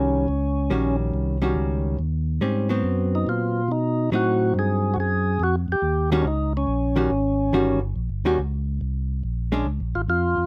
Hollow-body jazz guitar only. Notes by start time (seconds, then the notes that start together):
Already playing: D#3 G3 C#4 F#4
0.70 D#3 G3 C#4 F#4
1.42 D#3 G3 C#4 F#4
2.41 G3 C4 C#4
2.69 F#3 B3 C4
4.12 F#3 C4 D#4
6.12 D#3 G3 C#4 F#4
6.96 D#3 G3 C#4 F#4
7.53 D#3 G3 C#4 F#4
8.25 D#3 G3 C#4 F#4
9.52 G#3 C#4 D4